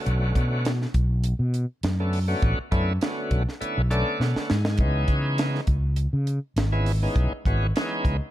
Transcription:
0.00 0.72 D3 medium
0.00 0.72 A3 medium
0.00 0.72 B3 medium
0.00 0.72 C#4 medium
0.00 0.72 F#4 medium
0.06 0.31 B1 medium
0.06 closed hi-hat medium
0.35 0.85 B2 medium
0.35 kick medium
0.35 closed hi-hat medium
0.65 snare loud
0.65 closed hi-hat medium
0.82 snare soft
0.94 1.33 B1 medium
0.94 kick medium
0.94 closed hi-hat medium
1.24 closed hi-hat medium
1.39 1.65 B2 medium
1.54 closed hi-hat medium
1.83 2.33 F#2 medium
1.83 snare medium
1.83 closed hi-hat medium
2.00 2.19 D3 medium
2.00 2.19 A3 medium
2.00 2.19 B3 medium
2.00 2.19 C#4 medium
2.00 2.19 A4 medium
2.13 open hi-hat medium
2.28 2.59 D3 medium
2.28 2.59 A3 medium
2.28 2.59 B3 medium
2.28 2.59 C#4 medium
2.28 2.59 F#4 loud
2.42 2.56 A1 medium
2.42 kick medium
2.42 closed hi-hat medium
2.59 muted fretless electric bass stroke soft
2.71 2.97 F#2 medium
2.71 2.93 D3 medium
2.71 2.93 A3 medium
2.71 2.93 B3 medium
2.71 2.93 C#4 medium
2.71 2.93 E4 loud
2.71 kick medium
2.71 closed hi-hat medium
3.01 3.43 D3 medium
3.01 3.43 A3 medium
3.01 3.43 B3 medium
3.01 3.43 C#4 medium
3.01 3.43 F#4 medium
3.01 snare loud
3.01 closed hi-hat medium
3.31 3.44 B1 medium
3.31 kick medium
3.31 closed hi-hat medium
3.49 snare soft
3.61 3.82 D3 medium
3.61 3.82 A3 medium
3.61 3.82 B3 medium
3.61 3.82 C#4 medium
3.61 3.82 E4 medium
3.61 muted fretless electric bass stroke soft
3.61 closed hi-hat medium
3.78 4.02 B1 medium
3.90 4.51 D3 medium
3.90 4.51 A3 medium
3.90 4.51 B3 medium
3.90 4.51 C#4 medium
3.90 4.51 A4 loud
3.90 4.18 D5 medium
3.90 closed hi-hat medium
4.20 4.33 B2 medium
4.20 4.48 F#5 medium
4.20 snare medium
4.36 muted fretless electric bass stroke soft
4.36 snare medium
4.50 4.81 G#2 medium
4.50 4.78 G#5 medium
4.50 snare medium
4.65 snare medium
4.78 5.04 C#2 medium
4.78 5.61 E3 medium
4.78 5.61 G#3 medium
4.78 5.61 B3 medium
4.78 5.61 C#4 medium
4.78 5.61 D#4 medium
4.78 kick medium
4.78 closed hi-hat medium
5.08 5.58 C#3 medium
5.08 kick medium
5.08 closed hi-hat medium
5.38 snare loud
5.38 closed hi-hat medium
5.55 snare soft
5.67 6.06 C#2 medium
5.67 kick medium
5.67 closed hi-hat medium
5.96 closed hi-hat medium
6.13 6.38 C#3 medium
6.27 closed hi-hat medium
6.56 7.06 G#1 medium
6.56 snare loud
6.56 closed hi-hat medium
6.72 6.92 E3 medium
6.72 6.92 G#3 medium
6.72 6.92 B3 medium
6.72 6.92 C#4 medium
6.72 6.92 E4 medium
6.86 open hi-hat medium
7.02 7.33 E3 medium
7.02 7.33 G#3 medium
7.02 7.33 B3 medium
7.02 7.33 C#4 medium
7.02 7.33 D#4 loud
7.16 7.29 B1 medium
7.16 kick medium
7.16 closed hi-hat medium
7.45 7.71 G#1 medium
7.45 7.67 E3 medium
7.45 7.67 G#3 medium
7.45 7.67 B3 medium
7.45 7.67 C#4 medium
7.45 7.67 F#4 medium
7.45 kick medium
7.45 closed hi-hat medium
7.76 8.17 E3 medium
7.76 8.17 G#3 medium
7.76 8.17 B3 medium
7.76 8.17 C#4 medium
7.76 8.17 D#4 loud
7.76 snare medium
7.76 closed hi-hat medium
8.05 8.18 C#2 medium
8.05 kick medium
8.05 closed hi-hat medium

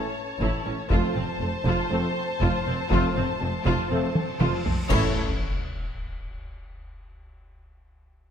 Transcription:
0.00 0.87 C#5 medium
0.00 0.87 A5 medium
0.40 0.48 A1 medium
0.40 0.49 A2 medium
0.40 0.64 E4 medium
0.40 taiko medium
0.65 0.74 A1 medium
0.65 0.74 A2 medium
0.65 0.73 C#4 medium
0.90 0.99 F1 medium
0.90 0.99 F2 medium
0.90 1.10 F3 medium
0.90 1.10 A3 medium
0.90 1.09 C4 medium
0.90 1.14 F4 medium
0.90 1.09 A4 medium
0.90 4.67 C5 medium
0.90 4.67 A5 medium
0.90 taiko loud
1.14 1.25 F1 medium
1.14 1.22 F2 medium
1.14 1.24 C4 medium
1.14 taiko mid soft
1.40 1.49 F1 medium
1.40 1.48 F2 medium
1.40 1.50 A3 medium
1.65 1.74 F1 medium
1.65 1.73 F2 medium
1.65 1.90 F4 medium
1.65 taiko medium
1.90 1.99 F1 medium
1.90 1.99 F2 medium
1.90 2.08 F3 medium
1.90 2.08 A3 medium
1.90 2.08 C4 medium
1.90 1.99 C4 medium
1.90 2.09 A4 medium
2.41 2.49 F1 medium
2.41 2.49 F2 medium
2.41 2.64 F4 medium
2.41 taiko medium
2.66 2.75 F1 medium
2.66 2.74 F2 medium
2.66 2.75 C4 medium
2.91 2.99 F1 loud
2.91 2.99 F2 medium
2.91 3.09 F3 medium
2.91 3.09 A3 medium
2.91 3.09 C4 medium
2.91 3.14 F4 medium
2.91 3.09 A4 medium
2.91 taiko loud
2.91 reverse cymbal medium
3.16 3.25 F1 medium
3.16 3.24 F2 medium
3.16 3.24 C4 medium
3.16 taiko mid medium
3.40 3.50 F1 medium
3.40 3.48 F2 medium
3.40 3.49 A3 medium
3.65 3.74 F1 loud
3.65 3.73 F2 medium
3.65 3.89 F4 medium
3.65 taiko medium
3.90 3.99 F1 medium
3.90 3.99 F2 medium
3.90 4.09 F3 medium
3.90 4.09 A3 medium
3.90 3.98 C4 medium
3.90 4.08 C4 medium
3.90 4.09 A4 medium
4.15 taiko high medium
4.40 4.49 F1 medium
4.40 4.49 F2 medium
4.40 4.64 F4 medium
4.40 taiko high loud
4.65 4.74 F1 medium
4.65 4.74 F2 medium
4.65 4.73 C4 medium
4.65 taiko low medium
4.90 5.19 A1 medium
4.90 5.19 A2 medium
4.90 5.11 E3 medium
4.90 5.11 A3 medium
4.90 5.12 C#4 medium
4.90 5.18 E4 medium
4.90 5.12 A4 medium
4.90 5.19 C#5 medium
4.90 5.19 A5 medium
4.90 concert bass drum medium
4.90 taiko loud
4.90 crash medium
4.90 sub drop medium

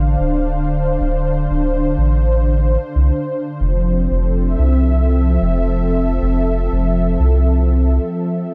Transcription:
0.00 0.16 A1 medium
0.00 3.61 D3 medium
0.00 4.57 D4 medium
0.00 4.47 C5 medium
0.00 3.61 F5 medium
0.20 0.97 D1 medium
1.00 1.47 D1 medium
1.50 1.95 D1 medium
1.98 2.77 A1 medium
2.95 3.11 C2 medium
3.60 4.07 F1 medium
3.60 8.54 F3 medium
3.82 8.54 C4 medium
4.11 4.56 F1 medium
4.15 8.54 A4 medium
4.46 8.54 E5 medium
4.59 5.38 C2 medium
5.41 6.19 F1 medium
6.22 6.68 F1 medium
6.72 7.17 F1 medium
7.20 7.99 C2 medium

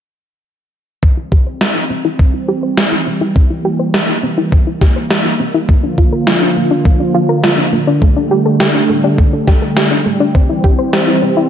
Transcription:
1.03 5.65 E3 medium
1.03 5.65 G3 medium
1.03 3.33 C4 medium
1.03 1.10 C4 medium
1.03 5.65 G4 medium
1.03 kick loud
1.17 1.31 E4 medium
1.32 1.45 G4 medium
1.32 kick medium
1.47 1.59 C5 medium
1.61 1.75 G4 medium
1.61 snare loud
1.76 1.89 E4 medium
1.90 2.03 C4 medium
2.05 2.19 E4 medium
2.19 2.27 C4 medium
2.19 kick loud
2.34 2.48 E4 medium
2.48 2.61 G4 medium
2.63 2.76 C5 medium
2.77 2.91 G4 medium
2.77 snare loud
2.92 3.06 E4 medium
3.07 3.19 C4 medium
3.21 3.35 E4 medium
3.36 7.98 A#3 medium
3.36 3.43 C4 medium
3.36 kick loud
3.50 3.64 E4 medium
3.65 3.78 G4 loud
3.79 3.92 C5 medium
3.94 4.08 G4 medium
3.94 snare loud
4.09 4.22 E4 medium
4.23 4.36 C4 medium
4.38 4.52 E4 loud
4.52 4.60 C4 medium
4.52 kick loud
4.67 4.81 E4 medium
4.81 4.94 G4 loud
4.81 kick loud
4.81 snare soft
4.96 5.09 C5 medium
5.11 5.24 G4 medium
5.11 snare loud
5.25 5.39 E4 medium
5.40 5.52 C4 medium
5.54 5.68 E4 medium
5.69 10.31 D3 medium
5.69 8.00 F3 medium
5.69 5.76 A#3 medium
5.69 8.00 F4 medium
5.69 kick loud
5.83 5.97 D4 medium
5.98 6.11 F4 medium
5.98 kick loud
6.13 6.25 A#4 medium
6.27 6.41 F4 loud
6.27 snare loud
6.42 6.56 D4 medium
6.56 6.69 A#3 medium
6.71 6.85 D4 medium
6.85 6.93 A#3 medium
6.85 kick loud
7.00 7.14 D4 medium
7.14 7.27 F4 loud
7.29 7.42 A#4 medium
7.44 7.57 F4 medium
7.44 snare loud
7.58 7.72 D4 medium
7.73 7.85 A#3 medium
7.87 8.01 D4 medium
8.02 11.49 G3 medium
8.02 10.33 A3 medium
8.02 8.09 A3 medium
8.02 11.49 G4 medium
8.02 kick loud
8.16 8.30 D4 medium
8.31 8.44 G4 medium
8.46 8.58 A4 medium
8.60 8.74 G4 loud
8.60 snare loud
8.75 8.88 D4 medium
8.89 9.02 A3 medium
9.04 9.18 D4 medium
9.18 9.26 A3 medium
9.18 kick loud
9.33 9.47 D4 medium
9.48 9.60 G4 medium
9.48 kick loud
9.48 snare soft
9.62 9.75 A4 medium
9.77 9.90 G4 medium
9.77 snare loud
9.91 10.05 D4 medium
10.06 10.18 A3 medium
10.20 10.34 D4 medium
10.35 11.49 E3 medium
10.35 10.42 C4 medium
10.35 11.49 C4 medium
10.35 kick loud
10.49 10.63 E4 medium
10.64 10.77 G4 medium
10.64 kick loud
10.79 10.91 C5 medium
10.93 11.07 G4 medium
10.93 snare loud
11.08 11.22 E4 medium
11.22 11.35 C4 medium
11.37 11.49 E4 loud

